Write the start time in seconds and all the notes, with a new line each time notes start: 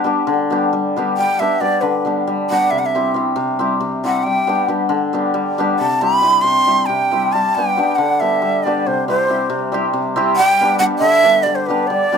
0.04 G3 B3 D4 G4
0.27 D3
0.50 G3 B3 D4 G4
0.73 G3
0.96 G3 B3 D4 G4
1.17 G3 G5
1.39 G3 B3 D4 G4 E5
1.61 G3 B3 D4 G4 D5
1.81 D3 B4
2.05 G3 B3 D4 G4
2.27 G3
2.50 G3 B3 D4 G4 F#5
2.71 C3 E5
2.79 F#5
2.86 E5
2.95 G3 C4 E4 G4
3.14 G3 C4 E4 G4
3.36 C3
3.59 G3 C4 E4 G4
3.80 C3
4.04 G3 C4 E4 G4 F#5
4.24 G3 G5
4.47 G3 B3 D4 G4
4.68 G3 B3 D4 G4
4.89 D3
5.13 G3 B3 D4 G4
5.34 G3
5.58 G3 B3 D4 G4
5.79 C3 A5
6.01 G3 C4 E4 G4 B5
6.22 G3 C4 E4 G4
6.42 C3 C6
6.67 G3 C4 E4 G4
6.86 C3 G5
7.11 G3 C4 E4 G4
7.33 G3 A5
7.55 G3 B3 D4 G4 G5
7.77 G3 B3 D4 G4
7.95 D3 F#5
8.20 G3 B3 D4 G4 E5
8.42 G3
8.64 G3 B3 D4 G4 D5
8.87 C3 C5
9.08 G3 C4 E4 G4 C5
9.28 G3 C4 E4 G4
9.50 C3
9.72 G3 C4 E4 G4
9.93 C3
10.16 G3 C4 E4 G4
10.36 G3 G5
10.61 G3 B3 D4 G4
10.79 G3 B3 D4 G4 F#5
10.99 D3 E5
11.23 G3 B3 D4 G4
11.43 G3 D5
11.55 C5
11.67 G3 B3 D4 G4 B4
11.87 G3 D5
12.12 G3 B3 D4 G4